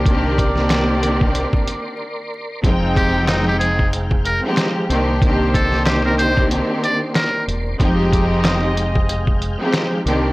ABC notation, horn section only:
X:1
M:4/4
L:1/8
Q:"Swing 16ths" 1/4=93
K:Fm
V:1 name="Horn section"
[GB=d]6 z2 | [A,CE]6 z [EGc]- | [EGc]6- [EGc] z | [Ace]6 z [GB=d] |]